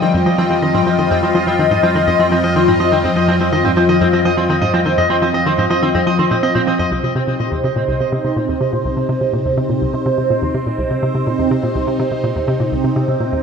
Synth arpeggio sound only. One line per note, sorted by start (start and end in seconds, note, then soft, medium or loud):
0.02 0.12 D#3 medium
0.14 0.24 F2 medium
0.26 0.33 F3 medium
0.38 0.42 F3 loud
0.50 0.60 F3 medium
0.63 0.72 D#3 medium
0.75 0.78 G#2 medium
0.87 0.91 F3 loud
0.99 1.09 D#3 medium
1.11 1.21 F2 medium
1.23 1.29 F3 medium
1.35 1.39 F3 loud
1.47 1.57 F3 medium
1.59 1.69 D#3 medium
1.71 1.75 G#2 medium
1.83 1.87 F3 loud
1.95 2.05 D#3 medium
2.08 2.17 F2 medium
2.20 2.26 F3 medium
2.32 2.36 F3 loud
2.44 2.54 F3 medium
2.56 2.66 D#3 medium
2.68 2.72 G#2 medium
2.80 2.84 F3 loud
2.92 3.02 D#3 medium
3.04 3.14 F2 medium
3.16 3.23 F3 medium
3.28 3.32 F3 loud
3.40 3.50 F3 medium
3.53 3.62 D#3 medium
3.65 3.69 G#2 medium
3.77 3.81 F3 loud
3.89 3.99 D#3 medium
4.01 4.11 F2 medium
4.13 4.20 F3 medium
4.25 4.29 F3 medium
4.37 4.47 F3 medium
4.49 4.59 D#3 medium
4.62 4.66 G#2 medium
4.74 4.78 F3 loud
4.86 4.96 D#3 medium
4.98 5.08 F2 medium
5.10 5.16 F3 medium
5.22 5.26 F3 loud
5.34 5.44 F3 medium
5.46 5.56 D#3 medium
5.58 5.62 G#2 medium
5.70 5.74 F3 loud
5.82 5.92 D#3 medium
5.95 6.04 F2 medium
6.07 6.13 F3 medium
6.19 6.29 D#3 medium
6.31 6.38 A#2 medium
6.43 6.50 C4 medium
6.55 6.59 A#2 medium
6.67 6.74 F3 medium
6.79 6.86 F2 medium
6.91 7.01 C2 medium
7.03 7.10 C3 medium
7.15 7.19 C3 medium
7.28 7.37 C3 medium
7.40 7.50 A#2 medium
7.52 7.56 D#2 medium
7.64 7.68 C3 loud
7.76 7.86 A#2 medium
7.88 7.98 C2 medium
8.00 8.07 C3 medium
8.12 8.16 C3 medium
8.24 8.34 C3 medium
8.36 8.46 A#2 medium
8.49 8.53 D#2 medium
8.61 8.65 C3 medium
8.73 8.83 A#2 medium
8.85 8.95 C2 medium
8.97 9.04 C3 medium
9.09 9.13 C3 medium
9.21 9.31 C3 medium
9.33 9.43 A#2 medium
9.45 9.49 D#2 medium
9.57 9.61 C3 medium
9.70 9.79 A#2 medium
9.82 9.92 C2 medium
9.94 10.00 C3 medium
10.06 10.10 C3 medium
10.18 10.28 C3 medium
10.30 10.40 A#2 medium
10.42 10.46 D#2 medium
10.54 10.58 C3 loud
10.67 10.76 A#2 medium
10.79 10.88 C2 medium
10.91 10.97 C3 medium
11.03 11.07 C3 medium
11.15 11.25 C3 medium
11.27 11.37 A#2 medium
11.39 11.43 D#2 medium
11.51 11.55 C3 loud
11.63 11.73 A#2 medium
11.75 11.85 C2 medium
11.87 11.94 C3 medium
12.00 12.03 C3 medium
12.12 12.21 C3 medium
12.24 12.34 A#2 medium
12.36 12.40 D#2 medium
12.48 12.52 C3 loud
12.60 12.70 A#2 medium
12.72 12.82 C2 medium
12.84 12.91 C3 medium
12.96 13.00 C3 medium
13.08 13.18 C3 medium
13.20 13.30 A#2 medium
13.32 13.36 D#2 medium